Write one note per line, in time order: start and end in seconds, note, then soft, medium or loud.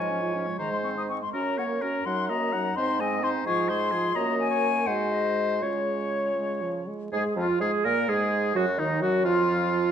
0.00 0.47 G#2 soft
0.00 0.61 F3 soft
0.00 0.12 G#3 soft
0.00 0.58 C#5 soft
0.00 0.37 G#5 medium
0.10 0.24 C#4 soft
0.22 0.36 F4 soft
0.35 0.48 C#4 soft
0.47 0.59 G#3 soft
0.59 1.21 G#2 soft
0.59 0.73 D#3 soft
0.59 1.09 G#3 soft
0.59 1.08 C5 soft
0.59 0.71 A#5 soft
0.72 0.86 G#3 soft
0.72 0.78 C6 soft
0.84 0.98 C4 soft
0.84 0.89 C#6 soft
0.97 1.10 D#4 soft
0.97 1.03 D#6 soft
1.09 1.23 C4 soft
1.09 1.21 C#6 soft
1.22 1.33 G#3 soft
1.22 1.33 C6 soft
1.33 1.97 F#2 soft
1.33 1.59 C#4 soft
1.33 1.61 F#4 soft
1.33 1.60 A#4 soft
1.33 1.57 A#5 soft
1.58 1.84 A#3 soft
1.58 1.85 A#4 soft
1.58 1.83 C#5 soft
1.58 1.64 F#5 medium
1.81 2.05 C#4 soft
1.81 2.06 F#4 soft
1.81 2.06 A#4 soft
1.81 2.07 A#5 soft
2.05 2.69 F#2 soft
2.05 2.31 F#3 soft
2.05 2.32 D#4 soft
2.05 2.31 F#5 soft
2.05 2.28 C6 medium
2.29 2.55 A#3 soft
2.29 2.56 F#4 soft
2.29 2.54 D#5 soft
2.29 2.77 A#5 medium
2.53 2.76 F#3 soft
2.53 2.77 D#4 soft
2.53 2.76 F#5 soft
2.76 3.38 G#2 medium
2.76 3.01 C4 soft
2.76 3.02 D#4 soft
2.76 3.02 C5 soft
2.76 3.02 C6 medium
3.00 3.25 G#3 soft
3.00 3.25 C4 soft
3.00 3.25 D#5 soft
3.00 3.23 G#5 medium
3.23 3.46 C4 soft
3.23 3.47 D#4 soft
3.23 3.46 C5 soft
3.23 3.29 C6 medium
3.46 4.07 G#2 medium
3.46 3.71 F3 soft
3.46 3.72 F4 soft
3.46 3.70 G#4 soft
3.46 3.71 C#6 medium
3.69 3.94 G#3 soft
3.69 3.95 G#4 soft
3.69 3.93 C5 soft
3.69 4.17 C6 medium
3.91 4.15 F3 soft
3.91 4.15 F4 soft
3.91 4.14 G#4 soft
4.15 4.83 F#2 soft
4.15 4.89 A#3 soft
4.15 4.70 F#4 soft
4.15 4.48 D#5 soft
4.15 4.38 A#5 medium
4.39 4.88 G#5 medium
4.50 4.88 C#5 soft
4.86 5.63 G#2 soft
4.86 5.62 G#3 soft
4.86 5.64 F#4 soft
4.86 5.63 C5 soft
4.86 5.13 F#5 medium
5.12 5.64 D#5 soft
5.62 6.88 C#3 soft
5.62 6.31 G#3 soft
5.62 6.88 F4 soft
5.62 6.88 C#5 soft
6.37 6.63 G#3 soft
6.62 6.89 F3 soft
6.88 7.11 G#3 soft
7.12 7.23 G#2 medium
7.12 7.38 G#3 medium
7.12 7.23 G#4 medium
7.12 7.35 G#4 medium
7.12 7.24 G#4 medium
7.36 7.47 F2 medium
7.36 7.62 F3 medium
7.36 7.60 F4 soft
7.36 7.60 F4 medium
7.60 7.71 G#2 medium
7.60 7.87 G#3 medium
7.60 7.86 G#4 soft
7.60 7.86 G#4 medium
7.60 7.72 G#4 medium
7.84 8.08 A#2 medium
7.84 8.10 A#3 medium
7.84 8.08 A#4 medium
7.84 8.11 A#4 medium
8.08 8.54 G#2 medium
8.08 8.54 G#3 medium
8.08 8.57 G#4 medium
8.08 8.58 G#4 medium
8.08 8.55 G#4 medium
8.55 8.80 F#2 medium
8.55 8.65 F#3 medium
8.55 8.80 F#4 medium
8.55 8.66 F#4 medium
8.55 8.81 F#4 medium
8.78 9.03 D#2 medium
8.78 9.03 D#3 medium
8.78 9.03 D#4 medium
8.78 9.01 D#4 medium
9.01 9.26 F#2 medium
9.01 9.26 F#3 medium
9.01 9.24 F#4 medium
9.24 9.92 F2 medium
9.24 9.92 F3 medium
9.24 9.92 F4 medium